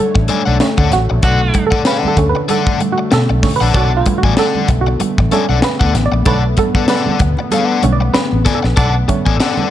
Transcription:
Already playing: D3 A3 C#5
0.00 A4
0.15 A1, muted overdriven electric guitar stroke, kick
0.28 A4 D5 G#5, closed hi-hat, high conga
0.46 B1 A4 D5 F#5
0.60 D3 A3 C#4, muted overdriven electric guitar stroke, snare, closed hi-hat
0.78 D2 A4 D5 F#5, kick
0.92 A1 F#4, muted overdriven electric guitar stroke, snare, closed hi-hat, muted conga, low conga
1.10 A#1, muted overdriven electric guitar stroke
1.23 B1 F#4 A4 D5 F#5, kick, closed hi-hat, muted conga
1.54 muted overdriven electric guitar stroke, kick, closed hi-hat, high conga
1.67 A4
1.71 A4 D5 F#5, muted fingered electric bass stroke, kick, high conga
1.85 G#4 B4 C#5 F5, snare, closed hi-hat
1.97 A4 D5 F#5
2.03 muted fingered electric bass stroke, high conga, low conga
2.08 A4
2.17 D2 D3 A3 C#4, muted overdriven electric guitar stroke, kick, closed hi-hat
2.29 B4
2.35 muted overdriven electric guitar stroke, low conga
2.48 A4 D5 F#5, closed hi-hat, muted conga, high conga
2.67 kick
2.80 muted overdriven electric guitar stroke, closed hi-hat, muted conga, high conga
2.92 F#4
2.98 muted overdriven electric guitar stroke
3.11 B2 A4, muted overdriven electric guitar stroke, snare, closed hi-hat, muted conga
3.29 B1, muted overdriven electric guitar stroke
3.43 D3 A3 C#4, kick, snare, open hi-hat, muted conga, low conga
3.56 B4
3.61 A#1 A4 D5 F#5
3.73 B1 D3 A3 B3 D4 F#4 A4 C#5 D5 F#5, kick, closed hi-hat
3.97 F4
4.06 muted overdriven electric guitar stroke, kick, closed hi-hat, high conga
4.18 F#4
4.23 A1 A4 D5 G#5, kick, high conga
4.37 A4 D5 F#5, snare, closed hi-hat, muted conga
4.55 high conga, low conga
4.68 B1, muted overdriven electric guitar stroke, kick, closed hi-hat, muted conga
4.81 F#4
4.87 muted overdriven electric guitar stroke, low conga
5.00 muted overdriven electric guitar stroke, muted fingered electric bass stroke, closed hi-hat, muted conga, high conga
5.18 A1, muted overdriven electric guitar stroke, kick
5.31 D3 A3 C#4 A4 D5 G#5, closed hi-hat, high conga
5.49 B1 A4 D5 F#5
5.62 B4, muted overdriven electric guitar stroke, snare, closed hi-hat
5.80 D2 A4 D5 F#5, kick
5.94 A1, muted overdriven electric guitar stroke, snare, closed hi-hat, muted conga, low conga
6.06 D5
6.12 A#1, muted overdriven electric guitar stroke
6.25 B1 D3 A3 D4 A4 B4 C#5 D5 F#5, kick, closed hi-hat, muted conga
6.57 A4, muted overdriven electric guitar stroke, kick, closed hi-hat, muted conga, high conga
6.75 A4 D5 F#5, muted fingered electric bass stroke, kick, high conga
6.88 A4 B4 D5 F#5, snare, closed hi-hat, muted conga
7.06 muted fingered electric bass stroke, high conga, low conga
7.19 D2, muted overdriven electric guitar stroke, kick, closed hi-hat, muted conga
7.37 muted overdriven electric guitar stroke, low conga
7.51 G#4 A4 C#5 F5, closed hi-hat, muted conga, high conga
7.64 A4 D5 F#5
7.82 B1 D3 A3 C#4, muted overdriven electric guitar stroke, closed hi-hat, high conga
7.93 D5
8.01 muted overdriven electric guitar stroke
8.13 B4, muted overdriven electric guitar stroke, muted fingered electric bass stroke, snare, closed hi-hat, muted conga
8.33 A1
8.45 A4 D5 G#5, kick, snare, closed hi-hat, muted conga, low conga
8.55 A4
8.63 A#1, muted overdriven electric guitar stroke, snare
8.76 B1 D4 A4 D5 F#5, kick, closed hi-hat, muted conga
9.08 D3 A3 C#4, muted overdriven electric guitar stroke, kick, closed hi-hat, high conga
9.26 A1 A4 D5 G#5, kick
9.40 A4 D5 F#5, snare, closed hi-hat
9.57 high conga, low conga

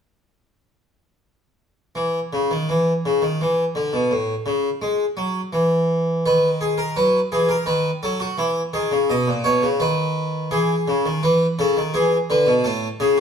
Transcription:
1.95 E3
2.33 C#3
2.51 D#3
2.69 E3
3.06 C#3
3.22 D#3
3.41 E3
3.75 D3
3.93 B2
4.11 A2
4.46 C#3
4.82 G#3
5.17 F#3
5.53 E3
6.26 D#3 B4
6.61 G#4
6.78 A#4
6.96 F#3 B4
7.32 E3 G#4
7.49 A#4
7.66 D#3 B4
8.03 F#3 A4
8.20 F#4
8.38 E3 E4
8.73 D#3 G#4
8.91 C#3
9.10 B2 D#5
9.28 A#2
9.44 B2 C#5
9.63 C#3
9.80 D#3 B4
10.51 E3 G#4
10.88 C#3
11.06 D#3
11.23 E3 B4
11.59 C#3 A4
11.77 D#3
11.94 E3 G#4
12.30 D3 B4
12.47 B2
12.64 A2 A4
13.00 C#3 G#4

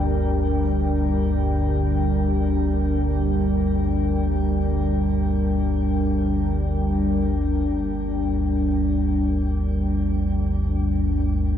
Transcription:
Already playing: G1 D2 G3 D4 A#4 G5
7.62 G1 D2

